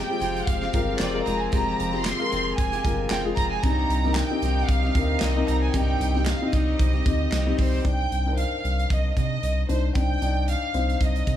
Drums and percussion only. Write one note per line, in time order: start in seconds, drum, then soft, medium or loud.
0.21 closed hi-hat medium
0.37 closed hi-hat soft
0.47 kick medium
0.47 closed hi-hat medium
0.62 snare soft
0.73 kick medium
0.73 closed hi-hat medium
0.99 snare medium
0.99 clap medium
0.99 closed hi-hat medium
1.27 closed hi-hat medium
1.53 kick loud
1.53 closed hi-hat medium
1.80 closed hi-hat medium
2.05 snare loud
2.05 clap medium
2.05 closed hi-hat medium
2.32 closed hi-hat medium
2.58 kick medium
2.58 closed hi-hat medium
2.73 closed hi-hat soft
2.85 kick medium
2.85 closed hi-hat medium
3.10 snare loud
3.10 clap medium
3.10 closed hi-hat medium
3.37 kick medium
3.37 closed hi-hat medium
3.63 kick loud
3.63 closed hi-hat medium
3.90 closed hi-hat medium
4.15 snare loud
4.15 clap medium
4.15 closed hi-hat medium
4.42 closed hi-hat medium
4.69 kick medium
4.69 closed hi-hat medium
4.95 kick medium
4.95 closed hi-hat medium
5.20 snare loud
5.20 clap medium
5.20 closed hi-hat medium
5.48 closed hi-hat medium
5.74 kick loud
5.74 closed hi-hat medium
6.01 closed hi-hat medium
6.26 snare loud
6.26 clap medium
6.26 closed hi-hat medium
6.53 kick medium
6.53 closed hi-hat medium
6.79 kick medium
6.79 closed hi-hat medium
7.06 kick medium
7.06 closed hi-hat medium
7.32 snare medium
7.32 clap medium
7.32 closed hi-hat medium
7.59 kick medium
7.59 open hi-hat medium
7.85 kick medium
7.85 closed hi-hat medium
8.12 closed hi-hat medium
8.38 closed hi-hat medium
8.65 closed hi-hat medium
8.79 closed hi-hat soft
8.90 kick medium
8.90 closed hi-hat medium
9.17 kick medium
9.17 closed hi-hat medium
9.43 closed hi-hat medium
9.69 closed hi-hat medium
9.95 kick medium
9.95 closed hi-hat medium
10.22 closed hi-hat medium
10.48 closed hi-hat medium
10.74 closed hi-hat medium
10.90 closed hi-hat soft
11.01 kick medium
11.01 closed hi-hat medium
11.16 closed hi-hat soft
11.27 kick medium
11.27 closed hi-hat medium